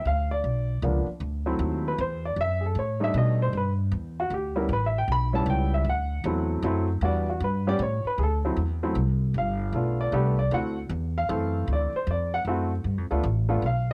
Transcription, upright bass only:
0.05 D2
0.44 B1
0.82 C#2
1.06 muted upright bass stroke
1.20 D2
1.59 D#2
1.98 E2
2.36 F#2
2.75 A2
3.14 B2
3.53 G2
3.92 E2
4.30 D2
4.69 A1
5.08 B1
5.46 C#2
5.85 D2
6.24 E2
6.62 F#2
7.01 E2
7.40 G2
7.79 A2
8.05 muted upright bass stroke
8.18 D2
8.56 E2
8.95 C2
9.34 G1
9.72 B1
10.12 C2
10.51 D2
10.89 E2
11.29 F#2
11.68 D2
11.93 muted upright bass stroke
12.07 F2
12.45 F#2
12.84 G2
12.98 F2
13.11 D2
13.23 A1
13.62 B1

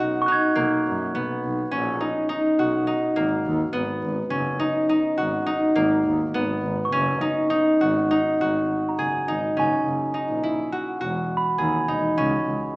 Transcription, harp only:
Already playing: B3 C#4 D#4
0.00 F#4
0.28 D#4
0.55 A#3
1.15 B3
1.71 C#4
2.00 D#4
2.29 D#4
2.59 F#4
2.87 D#4
3.16 A#3
3.73 B3
4.30 C#4
4.59 D#4
4.89 D#4
5.17 F#4
5.46 D#4
5.75 A#3
6.34 B3
6.92 C#4
7.21 D#4
7.50 D#4
7.81 F#4
8.11 D#4
8.41 F#4
8.99 G#4
9.28 D#4
9.57 C#4
10.14 D#4
10.43 E4
10.72 F#4
11.01 F#4
11.58 G#4
11.88 D#4
12.18 C#4

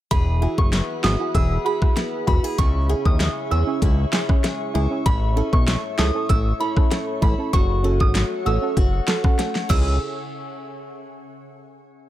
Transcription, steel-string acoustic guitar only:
0.11 E3 G#4
0.42 E4
0.73 B3
1.04 E4
1.35 G#4
1.66 E4
1.97 B3
2.28 F#4
2.44 G#4
2.59 C#3 E4
2.89 C#4
3.20 G#3
3.51 C#4
3.82 E4
4.13 C#4
4.44 G#3
4.75 E4
5.06 A2 E4
5.37 C#4
5.68 A3
5.99 C#4
6.30 E4
6.60 C#4
6.91 A3
7.22 E4
7.53 F#3 F#4
7.84 C#4
8.15 A3
8.46 C#4
8.77 F#4
9.08 C#4
9.39 A3
9.69 C#3 E3 G#3 C#4 G#4

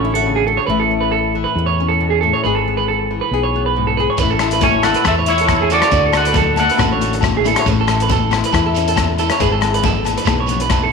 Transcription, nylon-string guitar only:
Already playing: D3 A3
0.05 E4
0.15 F#4
0.26 C#3
0.48 muted nylon-string guitar stroke
0.69 A2 E4
0.91 C#4
1.35 E3
1.58 muted nylon-string guitar stroke
1.80 C#4
2.00 B2
2.23 A2
2.45 G#2 G#4
2.68 B3
3.11 E3
3.34 G#4
3.56 B3
3.76 G#2
4.00 G#4
4.21 A2 E4
4.42 E4
4.84 muted nylon-string guitar stroke
5.07 E4
5.27 E4
5.48 B2
5.70 C#3
5.92 D3 F#4
6.15 F#4
6.56 A3
6.78 F#4
7.01 F#4
7.23 A2
7.45 E4
7.56 F#4
7.67 A2, muted nylon-string guitar stroke
8.32 E3
8.54 E4
8.77 C#4
8.97 E2
9.20 E4
9.39 G#2 G#4
9.63 B3
10.06 E3
10.27 G#4
10.51 B3
10.71 F#2

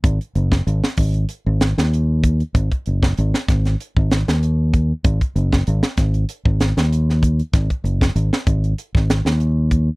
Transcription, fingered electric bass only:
0.04 G#1
0.35 F#1
0.67 G#1
0.98 G#1
1.46 G#1
1.78 D#2
2.54 G#1
2.87 F#1
3.18 G#1
3.49 G#1
3.96 G#1
4.28 D#2
5.05 G#1
5.36 F#1
5.68 G#1
5.98 G#1
6.45 G#1
6.77 D#2
7.53 G#1
7.84 F#1
8.15 G#1
8.47 G#1
8.95 G#1
9.25 D#2

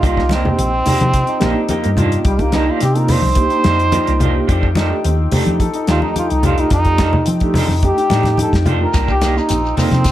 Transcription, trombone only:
0.07 F4
0.35 C4
2.27 G3
2.41 A#3
2.56 D#4
2.71 F4
2.84 G4
2.98 A#4
3.12 C5
5.90 F4
6.03 D#4
6.19 F4
6.32 D#4
6.46 F4
6.60 D#4
6.73 D#4
7.85 G4
8.42 A4
8.83 A#4
9.11 G4
9.38 D#4
9.79 C4

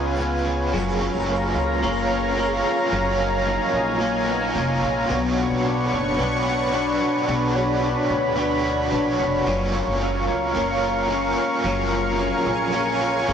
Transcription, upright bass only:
Already playing: C#2
0.73 F#1
1.15 F#1
1.55 C#2
1.83 F#1
2.92 F#1
3.74 A#1
4.56 F1
4.83 A#1
5.10 B1
5.51 B1
5.93 F#1
6.20 B1
7.29 B1
8.10 D2
8.92 A#1
9.20 F1
9.47 F#1
9.87 F#1
10.28 C#2
10.55 F#1
11.64 F#1
12.46 A#1
13.29 F1

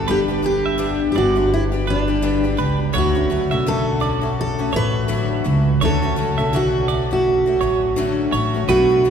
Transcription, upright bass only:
Already playing: G1
1.15 G1
2.59 C#2
2.95 D2
3.52 B1
4.74 A1
5.45 C#2
5.82 D2
6.39 B1
7.60 A1
8.32 A1
8.68 B1

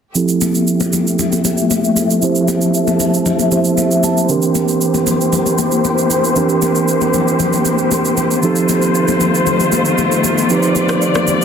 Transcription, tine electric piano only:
0.15 F3 C4 E4 G4 A4
2.22 F3 C4 E4 G4 C5
3.52 F3 C4 E4 G4 C5
3.78 E5
4.04 A5
4.29 D3 C4 D4 G4 A#4
4.35 E3
6.36 E3 C4 D4 G4 A#4
8.43 F3 C4 D#4 G4 A4
10.50 F3 C4 D#4 G4 B4
10.58 C5

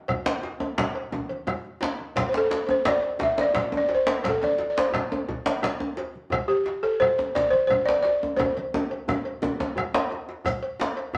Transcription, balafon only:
2.29 C5
2.37 A4
2.71 C5
2.88 D5
3.23 E5
3.41 D5
3.77 D5
3.95 C5
4.29 A4
4.44 D5
4.70 D5
4.79 C5
6.48 G4
6.83 A4
7.00 C5
7.35 D5
7.51 C5
7.67 C5
7.86 D5
8.03 D5
8.37 C5

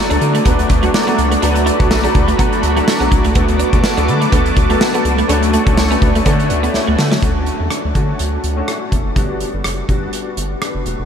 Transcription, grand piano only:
Already playing: F#3 A3 D4 F#4 A4 F#5
0.09 F#3 A3 D4 F#4 A4
0.45 F#3 A3 D4 F#4 B4
0.82 F#3 A3 D4 F#4 A4
1.07 F#3 A3 D4 F#4 A4
1.42 F#3 A3 D4 F#4 B4
1.80 F#3 A3 D4 F#4 A4
2.03 F#3 A3 D4 F#4 A4
2.38 F#3 A3 D4 F#4 A4
2.75 F#3 A3 D4 F#4 A4
3.00 F#3 A3 D4 F#4 A4
3.35 A3 B3 D4 F#4 A4
3.73 A3 B3 D4 F#4 A4
3.97 A3 B3 D4 F#4 A4
4.32 A3 B3 D4 F#4 A4
4.69 A3 B3 D4 F#4 A4
4.93 A3 B3 D4 F#4 A4
5.28 A3 C#4 D4 F#4 A4
5.65 A3 C#4 D4 F#4 A4
5.90 A3 C#4 D4 F#4 B4
6.25 A3 C#4 D4 F#4 A4
6.50 E5
6.74 E4 C#5
6.98 C#4 A4
7.22 A3 C#4 D4 F#4
7.95 A3 C#4 D4 F#4
8.56 A3 C#4 D4 F#4
8.68 E4 C#5
8.92 C#4 A4
9.16 G3 B3 D4 F#4
9.88 G3 B3 D4 F#4
10.62 D4 B4
10.86 A3 F#4

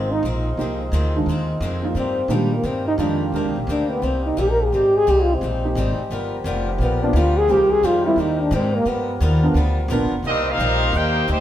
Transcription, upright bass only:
Already playing: G#1
0.23 A#1
0.57 C2
0.92 D2
1.26 D#2
1.61 F2
1.95 G2
2.28 A#2
2.64 G2
2.98 F2
3.32 D#2
3.44 C2
3.56 A#1
3.67 D2
4.02 C2
4.37 A#1
4.72 G#1
5.07 C2
5.41 A#1
5.75 G#1
5.98 muted upright bass stroke
6.10 G1
6.44 F1
6.78 A#1
7.13 D2
7.47 C2
7.83 F2
8.16 D#2
8.51 G#2
8.85 G2
9.20 D#2
9.54 D2
9.88 A#1
10.00 G1
10.12 F1
10.23 C2
10.58 A#1
10.92 D#2
11.28 D2

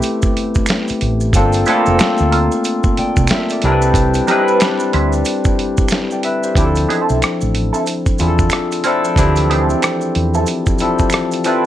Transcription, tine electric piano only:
Already playing: A3 B3 C4 E4 G4 B4
1.35 A#3 C4 D4 F4 A4
1.68 A3 C4 D4 F4 A4
1.74 A#3
2.99 D5 G5
3.33 A#4 E5
3.52 A4 D5
3.64 G3 C4 D4 E4 A#4
3.72 B4
4.29 G3 C4 D4 E4 B4
6.12 D5 G5
6.25 B4 E5
6.44 G4 C5
6.56 F3 C4 D4 E4 G4
6.64 A4
8.19 C4 D4 E4 F4 G#4
8.28 A4
8.85 F3 C4 D4 E4 A4
9.17 E3 C4 D4 E4 G4
9.23 F3
10.80 F3 C4 D4 E4 A4
11.44 F3 C4 D4 E4 B4

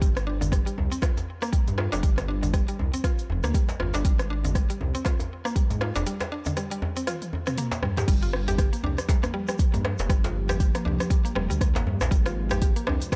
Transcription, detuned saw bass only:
0.01 G1
0.78 C2
1.68 G2
1.93 F1
2.03 G1
2.79 C2
3.29 F1
3.44 D2
3.80 G1
3.94 G1
4.05 G#1
4.80 C2
5.70 G#2
5.96 F1
8.08 G1
8.83 C2
9.74 G2
9.99 F1
10.10 G1
10.85 C2
11.36 F1
11.51 D2
11.76 G1
11.86 G2
12.01 A#1
12.11 G#1
12.87 C2

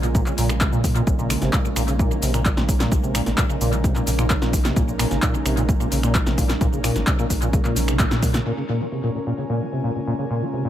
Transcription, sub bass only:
Already playing: A#1
0.38 A#1
0.73 A#2
1.07 A#1
1.42 G#1
1.76 A#1
2.22 A#1
2.57 A#1
2.92 A#1
3.26 G#1
3.61 A#1
4.07 A#1
4.42 A#1
4.76 A#1
5.11 G#1
5.46 A#1
5.92 A#1
6.26 A#1
6.61 A#1
6.96 G#1
7.30 A#1
7.76 A#1
8.11 A#2

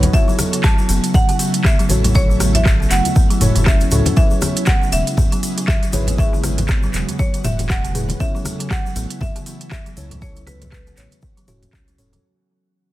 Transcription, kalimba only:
0.14 B3
0.28 F#3
0.53 F#3
0.64 F#3
0.79 F#3
0.89 B3
1.29 C#3
1.40 B3
1.65 B3
1.79 F#3
2.04 F#3
2.15 F#3
2.30 F#3
2.40 B3
2.80 C#3
2.91 B3
3.16 B3
3.30 F#3
3.56 F#3
3.66 C#4
3.92 C#3
4.06 C#4
4.16 F#3
4.31 F#3
4.42 B3
4.82 C#3
4.92 B3
5.18 B3
5.32 F#3
5.57 F#3
5.68 F#3
5.83 F#3
5.93 B3
6.33 C#3
6.44 B3
6.69 B3
6.84 F#3
7.09 F#3
7.19 F#3
7.34 F#3
7.44 B3
7.84 C#3
7.95 B3
8.20 B3
8.35 F#3
8.60 F#3
8.71 F#3
8.86 F#3
8.96 B3
9.36 C#3
9.47 B3
9.71 B3
9.86 F#3
10.11 F#3
10.21 F#3
10.36 F#3
10.47 B3
10.87 C#3
10.98 B3
11.23 B3
11.37 F#3
11.48 F#4
11.62 B3
11.73 C#4
11.88 F#3
11.99 C#4
12.13 F#3

